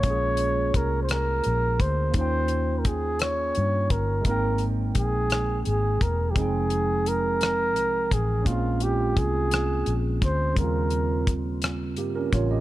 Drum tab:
HH |xxxxxx|xxxxxx|xxxxxx|xxxxxx|
SD |---r--|---r--|---r--|---r--|
BD |o-o--o|o-o--o|o-o--o|o----o|

HH |xxxxxx|xxxxxx|
SD |---r--|---r--|
BD |o-o--o|o-o--o|